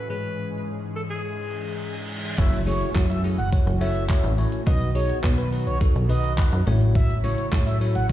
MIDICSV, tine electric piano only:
0, 0, Header, 1, 2, 480
1, 0, Start_track
1, 0, Tempo, 571429
1, 81, Time_signature, 4, 2, 24, 8
1, 6822, End_track
2, 0, Start_track
2, 0, Title_t, "Tine electric piano"
2, 0, Program_c, 0, 4
2, 77, Note_on_c, 0, 44, 63
2, 79, Note_on_c, 0, 52, 57
2, 80, Note_on_c, 0, 56, 57
2, 82, Note_on_c, 0, 61, 59
2, 84, Note_on_c, 0, 68, 72
2, 1965, Note_off_c, 0, 44, 0
2, 1966, Note_off_c, 0, 52, 0
2, 1967, Note_off_c, 0, 56, 0
2, 1968, Note_off_c, 0, 61, 0
2, 1969, Note_off_c, 0, 68, 0
2, 2000, Note_on_c, 0, 57, 104
2, 2000, Note_on_c, 0, 61, 96
2, 2002, Note_on_c, 0, 64, 98
2, 2003, Note_on_c, 0, 66, 93
2, 2003, Note_on_c, 0, 73, 109
2, 2190, Note_off_c, 0, 57, 0
2, 2190, Note_off_c, 0, 61, 0
2, 2191, Note_off_c, 0, 64, 0
2, 2191, Note_off_c, 0, 66, 0
2, 2192, Note_off_c, 0, 73, 0
2, 2237, Note_on_c, 0, 57, 81
2, 2239, Note_on_c, 0, 61, 75
2, 2239, Note_on_c, 0, 64, 78
2, 2240, Note_on_c, 0, 66, 75
2, 2242, Note_on_c, 0, 68, 88
2, 2429, Note_off_c, 0, 57, 0
2, 2430, Note_off_c, 0, 61, 0
2, 2430, Note_off_c, 0, 64, 0
2, 2430, Note_off_c, 0, 66, 0
2, 2431, Note_off_c, 0, 68, 0
2, 2478, Note_on_c, 0, 57, 81
2, 2479, Note_on_c, 0, 61, 71
2, 2480, Note_on_c, 0, 64, 74
2, 2481, Note_on_c, 0, 66, 72
2, 2482, Note_on_c, 0, 73, 89
2, 2669, Note_off_c, 0, 57, 0
2, 2670, Note_off_c, 0, 61, 0
2, 2670, Note_off_c, 0, 64, 0
2, 2671, Note_off_c, 0, 66, 0
2, 2671, Note_off_c, 0, 73, 0
2, 2719, Note_on_c, 0, 57, 76
2, 2720, Note_on_c, 0, 61, 70
2, 2723, Note_on_c, 0, 64, 72
2, 2723, Note_on_c, 0, 66, 72
2, 2724, Note_on_c, 0, 68, 86
2, 2910, Note_off_c, 0, 57, 0
2, 2910, Note_off_c, 0, 61, 0
2, 2911, Note_off_c, 0, 64, 0
2, 2912, Note_off_c, 0, 66, 0
2, 2912, Note_off_c, 0, 68, 0
2, 2959, Note_on_c, 0, 57, 77
2, 2960, Note_on_c, 0, 61, 71
2, 2961, Note_on_c, 0, 64, 73
2, 2962, Note_on_c, 0, 66, 71
2, 2963, Note_on_c, 0, 73, 89
2, 3150, Note_off_c, 0, 57, 0
2, 3150, Note_off_c, 0, 61, 0
2, 3151, Note_off_c, 0, 64, 0
2, 3151, Note_off_c, 0, 66, 0
2, 3152, Note_off_c, 0, 73, 0
2, 3199, Note_on_c, 0, 57, 106
2, 3199, Note_on_c, 0, 61, 98
2, 3201, Note_on_c, 0, 64, 91
2, 3202, Note_on_c, 0, 66, 90
2, 3204, Note_on_c, 0, 73, 118
2, 3389, Note_off_c, 0, 57, 0
2, 3390, Note_off_c, 0, 61, 0
2, 3390, Note_off_c, 0, 64, 0
2, 3391, Note_off_c, 0, 66, 0
2, 3392, Note_off_c, 0, 73, 0
2, 3438, Note_on_c, 0, 57, 103
2, 3439, Note_on_c, 0, 61, 99
2, 3441, Note_on_c, 0, 64, 94
2, 3442, Note_on_c, 0, 66, 95
2, 3442, Note_on_c, 0, 73, 114
2, 3629, Note_off_c, 0, 57, 0
2, 3630, Note_off_c, 0, 61, 0
2, 3630, Note_off_c, 0, 64, 0
2, 3631, Note_off_c, 0, 66, 0
2, 3631, Note_off_c, 0, 73, 0
2, 3678, Note_on_c, 0, 57, 96
2, 3679, Note_on_c, 0, 61, 88
2, 3680, Note_on_c, 0, 64, 89
2, 3682, Note_on_c, 0, 66, 90
2, 3683, Note_on_c, 0, 73, 103
2, 3869, Note_off_c, 0, 57, 0
2, 3870, Note_off_c, 0, 61, 0
2, 3870, Note_off_c, 0, 64, 0
2, 3871, Note_off_c, 0, 66, 0
2, 3871, Note_off_c, 0, 73, 0
2, 3917, Note_on_c, 0, 63, 99
2, 3918, Note_on_c, 0, 66, 94
2, 3921, Note_on_c, 0, 71, 118
2, 4109, Note_off_c, 0, 63, 0
2, 4109, Note_off_c, 0, 66, 0
2, 4110, Note_off_c, 0, 71, 0
2, 4156, Note_on_c, 0, 63, 83
2, 4157, Note_on_c, 0, 66, 74
2, 4160, Note_on_c, 0, 68, 89
2, 4348, Note_off_c, 0, 63, 0
2, 4349, Note_off_c, 0, 66, 0
2, 4350, Note_off_c, 0, 68, 0
2, 4396, Note_on_c, 0, 63, 80
2, 4397, Note_on_c, 0, 66, 76
2, 4400, Note_on_c, 0, 71, 91
2, 4588, Note_off_c, 0, 63, 0
2, 4589, Note_off_c, 0, 66, 0
2, 4590, Note_off_c, 0, 71, 0
2, 4635, Note_on_c, 0, 63, 75
2, 4637, Note_on_c, 0, 66, 72
2, 4640, Note_on_c, 0, 71, 87
2, 4828, Note_off_c, 0, 63, 0
2, 4829, Note_off_c, 0, 66, 0
2, 4830, Note_off_c, 0, 71, 0
2, 4876, Note_on_c, 0, 63, 81
2, 4878, Note_on_c, 0, 66, 72
2, 4880, Note_on_c, 0, 69, 86
2, 5068, Note_off_c, 0, 63, 0
2, 5069, Note_off_c, 0, 66, 0
2, 5070, Note_off_c, 0, 69, 0
2, 5116, Note_on_c, 0, 63, 107
2, 5117, Note_on_c, 0, 66, 91
2, 5120, Note_on_c, 0, 71, 111
2, 5308, Note_off_c, 0, 63, 0
2, 5309, Note_off_c, 0, 66, 0
2, 5310, Note_off_c, 0, 71, 0
2, 5358, Note_on_c, 0, 63, 105
2, 5360, Note_on_c, 0, 66, 97
2, 5362, Note_on_c, 0, 71, 115
2, 5549, Note_off_c, 0, 63, 0
2, 5550, Note_off_c, 0, 66, 0
2, 5551, Note_off_c, 0, 71, 0
2, 5600, Note_on_c, 0, 57, 101
2, 5600, Note_on_c, 0, 61, 94
2, 5601, Note_on_c, 0, 64, 95
2, 5602, Note_on_c, 0, 66, 94
2, 5603, Note_on_c, 0, 73, 114
2, 5984, Note_off_c, 0, 57, 0
2, 5984, Note_off_c, 0, 61, 0
2, 5985, Note_off_c, 0, 64, 0
2, 5986, Note_off_c, 0, 66, 0
2, 5986, Note_off_c, 0, 73, 0
2, 6079, Note_on_c, 0, 57, 81
2, 6080, Note_on_c, 0, 61, 73
2, 6081, Note_on_c, 0, 64, 78
2, 6083, Note_on_c, 0, 66, 74
2, 6085, Note_on_c, 0, 73, 91
2, 6270, Note_off_c, 0, 57, 0
2, 6270, Note_off_c, 0, 61, 0
2, 6271, Note_off_c, 0, 64, 0
2, 6272, Note_off_c, 0, 66, 0
2, 6273, Note_off_c, 0, 73, 0
2, 6321, Note_on_c, 0, 57, 81
2, 6323, Note_on_c, 0, 61, 74
2, 6324, Note_on_c, 0, 64, 76
2, 6325, Note_on_c, 0, 66, 75
2, 6326, Note_on_c, 0, 73, 94
2, 6511, Note_off_c, 0, 57, 0
2, 6511, Note_off_c, 0, 61, 0
2, 6512, Note_off_c, 0, 64, 0
2, 6512, Note_off_c, 0, 66, 0
2, 6513, Note_off_c, 0, 73, 0
2, 6560, Note_on_c, 0, 57, 79
2, 6561, Note_on_c, 0, 61, 70
2, 6562, Note_on_c, 0, 64, 74
2, 6562, Note_on_c, 0, 66, 72
2, 6564, Note_on_c, 0, 73, 88
2, 6750, Note_off_c, 0, 57, 0
2, 6751, Note_off_c, 0, 61, 0
2, 6751, Note_off_c, 0, 64, 0
2, 6751, Note_off_c, 0, 66, 0
2, 6752, Note_off_c, 0, 73, 0
2, 6822, End_track
0, 0, End_of_file